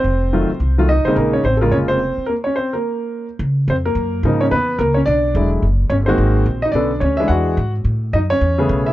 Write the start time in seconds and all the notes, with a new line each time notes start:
Already playing: C4 C5
0.04 F1
0.33 D#3 F#3 A3 F4
0.50 muted upright bass stroke
0.60 C2
0.78 D#3 F#3 A3 F4
0.89 D#4 D#5
1.05 B1 C#3 G#3 A#3 C4 D#4 C5
1.16 A#1 A#3 A#4
1.33 C#4 C#5
1.44 A1 C4 C5
1.57 A4
1.61 C#3 G#3 A#3 F4 A#4
1.72 F1 C#4 C#5
1.88 C4 C5
2.17 muted upright bass stroke
2.26 A#3 A#4
2.44 C#4 C#5
2.56 C4 C5
2.73 A#3 A#4
3.39 C#3
3.68 F2 C4 C5
3.85 A#3 A#4
3.95 F#2
4.23 G#2 C#3 F3 A#3 D#4
4.41 C#4 C#5
4.51 E2 B3 B4
4.79 C#2 A#3 A#4
4.94 C#4 C#5
5.06 B1 D4 D5
5.35 E1 D3 F#3 G#3 E4
5.62 F#1
5.90 G1 C#4 C#5
6.06 D#3 G#3 A#3 C4 F#4 C5
6.18 G#1
6.46 A#1
6.62 D#4 D#5
6.72 B1 D3 B3 C#4 D4 A4 D5
7.00 D2 C#4 C#5
7.17 E3 G#3 D4 E4 G#4 E5
7.28 E2 F#4 F#5
7.57 G#2
7.85 A2
8.13 F#2 D#4 D#5
8.30 C#4 C#5
8.41 E2
8.58 C#3 A3 B3 G#4
8.69 B1
8.86 E4 E5